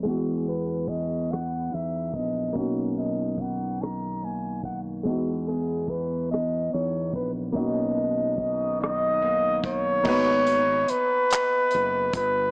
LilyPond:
<<
  \new Staff \with { instrumentName = "Flugelhorn" } { \time 6/8 \key b \major \tempo 4. = 48 r8 b'8 dis''8 fis''8 e''8 dis''8 | r8 dis''8 fis''8 ais''8 gis''8 fis''8 | r8 gis'8 b'8 dis''8 cis''8 b'8 | dis''4. dis''4 cis''8~ |
\key gis \minor cis''4 b'4. b'8 | }
  \new Staff \with { instrumentName = "Grand piano" } { \time 6/8 \key b \major <gis b fis'>2. | <ais cis' dis' fis'>2. | <gis b dis' fis'>2. | <ais cis' dis' fis'>2. |
\key gis \minor <ais b dis' fis' b'>2. | }
  \new Staff \with { instrumentName = "Clean electric guitar" } { \time 6/8 \key b \major <e gis'>8 b8 gis'8 b8 dis'8 b8 | <b, cis'>8 dis8 cis'8 dis8 ais8 dis8 | <e gis'>8 b8 gis'8 b8 dis'8 b8 | <b, cis'>8 dis8 cis'8 dis8 ais8 dis8 |
\key gis \minor r2. | }
  \new Staff \with { instrumentName = "Fingered electric bass" } { \clef bass \time 6/8 \key b \major e,2 e,8 ais,,8 | b,,2. | e,2 e,8 ais,,8 | b,,2. |
\key gis \minor gis,,4 r4 fis,,8 g,,8 | }
  \new DrumStaff \with { instrumentName = "Drums" } \drummode { \time 6/8 <hh bd>8 hh8 <hh bd>8 <hh ss>8 hh8 <hh bd>8 | <hh bd>8 hh8 <hh bd>8 <hh ss>8 hh8 <hh bd>8 | <hh bd>8 hh8 <hh bd>8 <hh ss>8 hh8 <hh bd>8 | <hh bd>8 hh8 <hh bd>8 <hh ss>8 hh8 <hh bd>8 |
<cymc bd>8 hh8 hh8 <hc hh>8 hh8 <hh bd>8 | }
>>